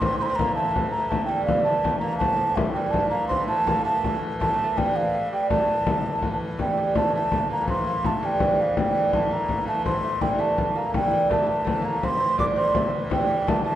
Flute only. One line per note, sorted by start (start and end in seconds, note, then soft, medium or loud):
0.00 0.18 C6 loud
0.19 0.27 A#5 medium
0.19 0.24 C6 medium
0.26 0.37 C6 loud
0.35 0.55 A#5 loud
0.55 0.90 A5 medium
0.91 1.11 A#5 loud
1.09 1.25 A5 medium
1.26 1.45 G5 medium
1.45 1.64 F5 medium
1.64 1.99 A5 medium
1.99 2.17 A#5 medium
2.18 2.57 A5 medium
2.56 2.72 E5 medium
2.72 2.92 G5 medium
2.91 3.09 A5 medium
3.10 3.27 A#5 medium
3.28 3.46 C6 medium
3.48 3.82 A5 medium
3.85 4.19 A5 medium
4.41 4.79 A5 medium
4.78 4.97 G5 medium
4.96 5.32 F5 medium
5.33 5.49 G5 medium
5.50 6.37 A5 medium
6.60 6.94 G5 medium
6.96 7.13 A5 medium
7.15 7.48 A5 medium
7.53 7.68 A#5 medium
7.69 8.08 C6 medium
8.06 8.27 A5 medium
8.25 8.62 G5 medium
8.61 8.78 F5 medium
8.79 9.12 G5 medium
9.14 9.34 A5 medium
9.32 9.67 A#5 medium
9.68 9.85 A5 medium
9.85 10.23 C6 medium
10.22 10.42 G5 medium
10.40 10.80 A5 medium
10.78 10.94 A#5 medium
10.95 11.28 G5 medium
11.32 11.48 A5 medium
11.49 11.87 A5 medium
11.86 12.06 A#5 medium
12.04 12.39 C6 loud
12.39 12.45 D6 loud
12.57 12.91 C6 medium
13.12 13.50 G5 medium
13.48 13.65 A5 medium
13.65 13.75 A5 medium